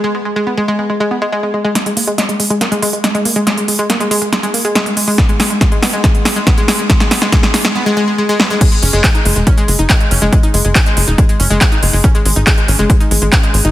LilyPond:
<<
  \new Staff \with { instrumentName = "Synth arpeggio sound" } { \clef bass \time 4/4 \key fis \mixolydian \tempo 4 = 140 gis16 gis16 gis16 gis16 b16 gis16 gis16 gis16 gis16 gis16 b16 gis16 gis16 gis16 gis16 gis16 | gis16 gis16 ais16 gis16 gis16 gis16 gis16 gis16 ais16 gis16 gis16 gis16 gis16 gis16 ais16 gis16 | gis16 gis16 gis16 gis16 ais16 gis16 gis16 gis16 gis16 gis16 ais16 gis16 gis16 gis16 gis16 gis16 | b16 gis16 gis16 gis16 gis16 gis16 b16 gis16 gis16 gis16 gis16 gis16 b16 gis16 gis16 gis16 |
gis16 gis16 b16 gis16 gis16 gis16 gis16 gis16 b16 gis16 gis16 gis16 gis16 gis16 b16 gis16 | gis16 gis16 cis'16 gis16 r16 dis'16 gis16 gis16 cis'16 gis16 gis16 dis'16 gis16 gis16 cis'16 gis16 | gis16 dis'16 gis16 gis16 cis'16 gis16 gis16 dis'16 gis16 gis16 cis'16 gis16 gis16 dis'16 gis16 gis16 | cis'16 gis16 gis16 dis'16 gis16 gis16 cis'16 gis16 gis16 dis'16 gis16 gis16 cis'16 gis16 gis16 dis'16 | }
  \new Staff \with { instrumentName = "Analog synth bass" } { \clef bass \time 4/4 \key fis \mixolydian r1 | r1 | r1 | r1 |
r1 | r8 fis,,16 fis,,16 r8 fis,,16 e,,16 r8 fis,,16 fis,,16 r8 fis,,16 fis,,16 | r8 fis,,16 fis,,16 r8 fis,,16 e,,16 r8 fis,,16 fis,,16 r8 fis,,16 fis,,16 | r8 gis,,16 gis,,16 r8 gis,,16 fis,,16 r8 gis,,16 gis,,16 r8 gis,,16 gis,,16 | }
  \new DrumStaff \with { instrumentName = "Drums" } \drummode { \time 4/4 r4 r4 r4 r4 | <hh sn>16 hh16 hho16 hh16 <hh sn>16 hh16 hho16 hh16 <hh sn>16 hh16 hho16 hh16 <hh sn>16 hh16 hho16 hh16 | <hh sn>16 hh16 hho16 hh16 <hh sn>16 hh16 hho16 hh16 <hh sn>16 hh16 hho16 hh16 <hh sn>16 hh16 hho16 hho16 | <hh bd sn>16 hh16 <hho sn>16 hh16 <hh bd sn>16 hh16 <hho sn>16 hh16 <hh bd sn>16 hh16 <hho sn>16 hh16 <hh bd sn>16 hh16 <hho sn>16 hh16 |
<hh bd sn>16 <hh sn>16 <hho sn>16 <hh sn>16 <hh bd sn>16 <hh sn>16 <hho sn>16 <hh sn>16 r4 r8 sn8 | <cymc hh bd>16 hh16 hho16 hh16 <hc hh bd>16 hh16 hho16 hh16 <hh bd>16 hh16 hho16 hh16 <hc hh bd>16 hh16 hho16 hh16 | <hh bd>16 hh16 hho16 hh16 <hc hh bd>16 hh16 hho16 hh16 <hh bd>16 hh16 hho16 hh16 <hc hh bd>16 hh16 hho16 hho16 | <hh bd>16 hh16 hho16 hh16 <hc hh bd>16 hh16 hho16 hh16 <hh bd>16 hh16 hho16 hh16 <hc hh bd>16 hh16 hho16 hh16 | }
>>